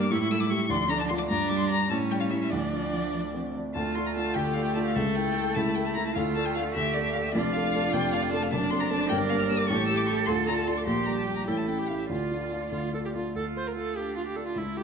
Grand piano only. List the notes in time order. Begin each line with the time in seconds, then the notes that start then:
Already playing: G2 A#3 G4 A#4
0.10 A2
0.31 A3
0.51 E4 G4
0.70 D2
0.90 A3
1.11 D4 F4
1.31 G2
1.51 G3
1.71 D4 G4
1.90 A2
2.12 G3
2.32 C#4 E4
2.52 D2
2.73 F4
2.93 F3
3.14 D4
3.34 C4
3.56 D4
3.75 D2 D3
3.96 A3 D4 F4
4.16 A3 D4 F4
4.36 D2 D3
4.56 A3 D4 F4
4.76 A3 D4 F4
4.96 C#2 C#3
5.17 A3 E4 A4
5.36 A3 E4 A4
5.56 C#2 C#3
5.77 A3 E4 A4
5.96 A3 E4 A4
6.16 D2 D3
6.36 A3 D4 A4
6.56 A3 D4 A4
6.76 D2 D3
6.96 A3 D4 A4
7.16 A3 D4 A4
7.35 F1 F2
7.55 A3 D4 A4
7.75 A3 D4 A4
7.94 F1 F2
8.14 A3 D4 A4
8.33 A3 D4 A4
8.53 F#1 F#2
8.72 C4 D4 A4
8.91 C4 D4 A4
9.11 G1 G2
9.31 A#3 G4 A#4
9.50 A#3 G4 A#4
9.70 A1 A2
9.89 A3 E4 G4
10.09 A3 E4
10.28 D2 D3
10.48 A3 D4 F4
10.68 A3 D4 F4
10.87 A#1 A#2
11.07 G3 D4 G4
11.27 G3 D4 G4
11.47 A1 A2
11.68 A3 C#4 E4
11.89 A3 C#4 E4
12.09 D2 D3
12.31 A3 D4 F4
12.51 A3 D4 F4
12.72 D2 D3
12.93 A3 D4 F4
13.15 A3 D4 F4
13.35 D2
13.55 A3
13.76 F4
13.96 A4
14.17 F4
14.36 D4
14.56 C#2
14.76 A3